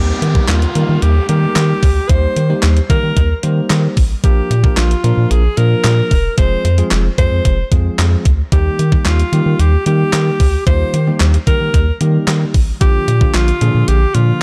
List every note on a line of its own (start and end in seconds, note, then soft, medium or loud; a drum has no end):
0.00 0.12 D#2 loud
0.00 0.24 G3 medium
0.00 0.24 A#3 medium
0.00 0.24 D#4 medium
0.00 0.24 G4 medium
0.00 0.51 G4 medium
0.00 0.24 A#4 medium
0.00 downlifter medium
0.22 0.39 D#3 loud
0.22 closed hi-hat medium
0.35 0.64 G3 medium
0.35 0.64 A#3 medium
0.35 0.64 D#4 medium
0.35 0.64 G4 medium
0.35 0.64 A#4 medium
0.35 kick loud
0.48 0.66 D#2 loud
0.48 1.04 F4 medium
0.48 snare medium
0.48 clap loud
0.48 closed hi-hat medium
0.62 closed hi-hat medium
0.75 0.84 D#3 loud
0.75 1.13 G3 medium
0.75 1.14 A#3 medium
0.75 1.14 D#4 medium
0.75 1.14 G4 medium
0.75 1.14 A#4 medium
0.75 closed hi-hat medium
0.89 0.98 D#3 loud
1.02 1.20 D#2 loud
1.02 1.28 G4 loud
1.02 closed hi-hat medium
1.29 1.47 D#3 loud
1.29 1.86 G3 medium
1.29 1.86 A#3 medium
1.29 1.86 D#4 medium
1.29 2.11 G4 loud
1.29 1.86 G4 medium
1.29 1.86 A#4 medium
1.29 closed hi-hat medium
1.56 1.73 D#3 loud
1.56 snare medium
1.56 clap loud
1.56 closed hi-hat medium
1.83 2.00 D2 medium
1.83 kick loud
1.83 open hi-hat medium
2.09 2.27 D#2 loud
2.09 2.38 G3 medium
2.09 2.38 A#3 medium
2.09 2.38 D#4 medium
2.09 2.38 G4 medium
2.09 2.63 C5 loud
2.09 2.38 C5 medium
2.09 kick loud
2.09 closed hi-hat medium
2.36 2.54 D#3 loud
2.36 closed hi-hat medium
2.50 2.78 G3 medium
2.50 2.78 A#3 medium
2.50 2.78 D#4 medium
2.50 2.78 G4 medium
2.50 2.78 C5 medium
2.62 2.81 D#2 loud
2.62 snare medium
2.62 clap loud
2.62 closed hi-hat medium
2.77 closed hi-hat medium
2.89 2.99 D#3 loud
2.89 3.28 G3 medium
2.89 3.28 A#3 medium
2.89 3.28 D#4 medium
2.89 3.28 G4 medium
2.89 3.40 A#4 loud
2.89 3.28 A#4 medium
2.89 kick loud
2.89 closed hi-hat medium
3.03 3.12 D#3 medium
3.17 3.34 D#2 loud
3.17 kick medium
3.17 closed hi-hat medium
3.43 3.61 D#3 loud
3.43 4.00 G3 medium
3.43 4.01 A#3 medium
3.43 4.01 D#4 medium
3.43 4.01 G4 medium
3.43 4.01 C5 medium
3.43 closed hi-hat medium
3.70 3.88 D#3 loud
3.70 snare loud
3.70 clap loud
3.70 closed hi-hat medium
3.97 4.14 A1 medium
3.97 kick loud
3.97 open hi-hat medium
4.24 4.41 A#1 loud
4.24 4.52 F3 medium
4.24 4.52 A#3 medium
4.24 4.52 D4 medium
4.24 4.52 F4 medium
4.24 4.79 G4 loud
4.24 4.53 A#4 medium
4.24 kick loud
4.24 closed hi-hat medium
4.50 4.68 A#2 loud
4.50 closed hi-hat medium
4.64 4.92 F3 medium
4.64 4.92 A#3 medium
4.64 4.92 D4 medium
4.64 4.92 F4 medium
4.64 4.93 A#4 medium
4.64 kick loud
4.77 4.95 A#1 loud
4.77 5.32 F4 medium
4.77 snare loud
4.77 clap loud
4.77 closed hi-hat medium
4.91 closed hi-hat medium
5.04 5.13 A#2 loud
5.04 5.42 F3 medium
5.04 5.42 A#3 medium
5.04 5.42 D4 medium
5.04 5.42 F4 medium
5.04 5.42 A#4 medium
5.04 closed hi-hat medium
5.17 5.26 A#2 loud
5.31 5.48 A#1 loud
5.31 5.59 G#4 loud
5.31 closed hi-hat medium
5.57 5.75 A#2 loud
5.57 6.15 F3 medium
5.57 6.15 A#3 medium
5.57 6.15 D4 medium
5.57 6.15 F4 medium
5.57 6.38 A#4 loud
5.57 6.15 A#4 medium
5.57 closed hi-hat medium
5.84 6.02 A#2 loud
5.84 snare medium
5.84 clap loud
5.84 closed hi-hat loud
6.11 6.29 E1 loud
6.11 kick loud
6.11 open hi-hat medium
6.37 6.55 F1 loud
6.37 6.66 F3 medium
6.37 6.66 G#3 medium
6.37 6.66 C4 medium
6.37 6.67 F4 medium
6.37 6.67 G#4 medium
6.37 6.88 C5 loud
6.37 kick loud
6.37 closed hi-hat medium
6.65 6.82 F2 loud
6.65 closed hi-hat medium
6.78 7.07 F3 medium
6.78 7.07 G#3 medium
6.78 7.07 C4 medium
6.78 7.07 F4 medium
6.78 7.07 G#4 medium
6.78 closed hi-hat medium
6.91 7.09 F1 loud
6.91 snare medium
6.91 clap loud
6.91 closed hi-hat medium
7.18 7.27 F2 loud
7.18 7.56 F3 medium
7.18 7.56 G#3 medium
7.18 7.57 C4 medium
7.18 7.57 F4 medium
7.18 7.57 G#4 medium
7.18 7.68 C5 loud
7.18 kick loud
7.18 closed hi-hat medium
7.32 7.40 F2 loud
7.45 7.63 F1 loud
7.45 kick medium
7.45 closed hi-hat medium
7.72 7.89 F2 medium
7.72 8.29 F3 medium
7.72 8.29 G#3 medium
7.72 8.29 C4 medium
7.72 8.29 F4 medium
7.72 8.29 G#4 medium
7.72 kick medium
7.72 closed hi-hat medium
7.99 8.16 F2 loud
7.99 snare medium
7.99 clap loud
7.99 closed hi-hat loud
8.25 8.43 D2 medium
8.25 kick loud
8.25 closed hi-hat medium
8.52 8.70 D#2 loud
8.52 8.81 D#3 medium
8.52 8.81 G3 medium
8.52 8.81 A#3 medium
8.52 8.81 D#4 medium
8.52 9.08 G4 medium
8.52 8.81 G4 medium
8.52 kick loud
8.52 closed hi-hat medium
8.79 8.96 D#3 loud
8.79 closed hi-hat medium
8.92 9.21 D#3 medium
8.92 9.21 G3 medium
8.92 9.21 A#3 medium
8.92 9.21 D#4 medium
8.92 9.21 G4 medium
8.92 kick loud
9.05 9.23 D#2 loud
9.05 9.61 F4 medium
9.05 snare medium
9.05 clap loud
9.05 closed hi-hat medium
9.20 closed hi-hat medium
9.33 9.41 D#3 loud
9.33 9.71 D#3 medium
9.33 9.71 G3 medium
9.33 9.71 A#3 medium
9.33 9.71 D#4 medium
9.33 9.71 G4 medium
9.33 closed hi-hat medium
9.46 9.55 D#3 loud
9.59 9.77 D#2 loud
9.59 9.86 G4 loud
9.59 closed hi-hat medium
9.86 10.43 D#3 medium
9.86 10.04 D#3 loud
9.86 10.43 G3 medium
9.86 10.43 A#3 medium
9.86 10.44 D#4 medium
9.86 10.63 G4 loud
9.86 10.44 G4 medium
9.86 closed hi-hat medium
10.13 10.30 D#3 loud
10.13 snare medium
10.13 clap loud
10.13 closed hi-hat loud
10.40 10.57 D2 medium
10.40 kick loud
10.40 open hi-hat medium
10.66 10.84 D#2 loud
10.66 10.95 D#3 medium
10.66 10.95 G3 medium
10.66 10.95 A#3 medium
10.66 10.95 D#4 medium
10.66 10.95 F4 medium
10.66 11.16 C5 loud
10.66 kick loud
10.66 closed hi-hat medium
10.93 11.11 D#3 loud
10.93 closed hi-hat medium
11.07 11.36 D#3 medium
11.07 11.36 G3 medium
11.07 11.36 A#3 medium
11.07 11.36 D#4 medium
11.07 11.36 G4 medium
11.20 11.38 D#2 loud
11.20 snare medium
11.20 clap loud
11.20 closed hi-hat medium
11.34 closed hi-hat medium
11.47 11.85 D#3 medium
11.47 11.56 D#3 loud
11.47 11.85 G3 medium
11.47 11.85 A#3 medium
11.47 11.85 D#4 medium
11.47 11.85 G4 medium
11.47 11.97 A#4 loud
11.47 kick loud
11.47 closed hi-hat medium
11.61 11.69 D#3 loud
11.74 11.91 D#2 loud
11.74 kick medium
11.74 closed hi-hat medium
12.00 12.58 D#3 medium
12.00 12.18 D#3 loud
12.00 12.58 G3 medium
12.00 12.58 A#3 medium
12.00 12.58 D#4 medium
12.00 12.58 G4 medium
12.00 closed hi-hat medium
12.27 12.45 D#3 loud
12.27 snare medium
12.27 clap loud
12.27 closed hi-hat medium
12.54 12.72 A1 loud
12.54 kick loud
12.54 open hi-hat medium
12.81 12.98 A#1 loud
12.81 13.10 D3 medium
12.81 13.10 F3 medium
12.81 13.10 A#3 medium
12.81 13.10 D4 medium
12.81 13.10 F4 medium
12.81 13.36 G4 loud
12.81 kick loud
12.81 closed hi-hat medium
13.08 13.25 A#2 loud
13.08 closed hi-hat medium
13.21 13.50 D3 medium
13.21 13.50 F3 medium
13.21 13.50 A#3 medium
13.21 13.50 D4 medium
13.21 13.50 F4 medium
13.21 kick loud
13.34 13.52 A#1 loud
13.34 13.89 F4 loud
13.34 snare medium
13.34 clap loud
13.34 closed hi-hat medium
13.48 closed hi-hat medium
13.61 13.70 A#2 loud
13.61 13.99 D3 medium
13.61 13.99 F3 medium
13.61 14.00 A#3 medium
13.61 14.00 D4 medium
13.61 14.00 G#4 medium
13.61 closed hi-hat medium
13.75 13.83 A#2 loud
13.88 14.06 A#1 loud
13.88 14.16 G4 loud
13.88 closed hi-hat medium
14.14 14.32 A#2 loud
14.14 14.43 D3 medium
14.14 14.43 F3 medium
14.14 14.43 A#3 medium
14.14 14.43 D4 medium
14.14 14.43 F4 loud
14.14 14.43 F4 medium
14.14 closed hi-hat medium